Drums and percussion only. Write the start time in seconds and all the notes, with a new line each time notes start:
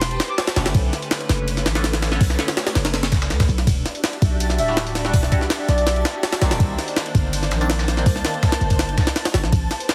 0.01 snare, ride, shaker
0.11 ride
0.20 snare, ride, shaker
0.38 snare, ride, shaker
0.47 snare, ride, shaker
0.56 snare, ride, shaker
0.66 snare, ride, shaker
0.75 kick, ride, shaker
0.93 snare, ride, shaker
1.02 closed hi-hat
1.11 snare, ride, shaker
1.21 ride
1.29 snare, ride, shaker
1.48 ride, shaker
1.57 snare, closed hi-hat
1.66 snare, ride, shaker
1.75 snare, ride
1.84 snare, ride, shaker
1.93 snare, ride
2.02 snare, ride, shaker
2.12 snare
2.21 kick, open hi-hat, shaker
2.30 snare, shaker
2.39 snare, ride
2.48 snare, ride, shaker
2.57 snare, ride, shaker
2.67 snare, ride
2.75 snare, ride, shaker
2.85 snare, closed hi-hat, ride
2.94 snare, ride, shaker
3.03 snare, ride
3.12 kick, snare, ride, shaker
3.22 snare, shaker
3.30 snare, ride, shaker
3.40 kick, snare, ride, shaker
3.49 shaker
3.58 snare, ride
3.67 kick, ride, shaker
3.86 snare, ride, shaker
3.95 closed hi-hat
4.04 snare, ride, shaker
4.13 ride
4.22 kick, ride, shaker
4.40 ride, shaker
4.50 snare, closed hi-hat
4.58 ride, shaker
4.68 snare
4.77 snare, ride, shaker
4.87 closed hi-hat
4.95 snare, ride, shaker
5.05 snare
5.14 kick, open hi-hat, shaker
5.23 snare
5.32 kick, ride, shaker
5.41 snare
5.50 snare, ride, shaker
5.68 snare, ride, shaker
5.78 closed hi-hat
5.87 snare, ride, shaker
5.96 ride
6.05 snare, ride, shaker
6.23 snare, ride, shaker
6.33 snare, ride, shaker
6.42 snare, ride, shaker
6.51 snare, ride, shaker
6.60 kick, ride, shaker
6.79 snare, ride, shaker
6.88 closed hi-hat
6.96 snare, ride, shaker
7.06 ride
7.15 kick, ride, shaker
7.33 ride, shaker
7.43 snare, closed hi-hat
7.51 snare, ride, shaker
7.61 closed hi-hat
7.70 snare, ride, shaker
7.79 snare, shaker
7.88 snare, closed hi-hat, ride
7.97 snare, shaker
8.06 kick, open hi-hat, shaker
8.16 snare
8.25 snare, ride, shaker
8.34 ride
8.43 kick, snare, ride, shaker
8.52 snare, ride
8.61 ride, shaker
8.70 kick, closed hi-hat, ride
8.79 snare, ride, shaker
8.89 ride
8.98 kick, snare, ride, shaker
9.07 snare, ride
9.16 snare, ride, shaker
9.25 snare, closed hi-hat, ride
9.34 snare, ride, shaker
9.44 snare
9.52 kick, ride, shaker
9.71 snare, ride, shaker
9.80 closed hi-hat
9.89 snare, ride, shaker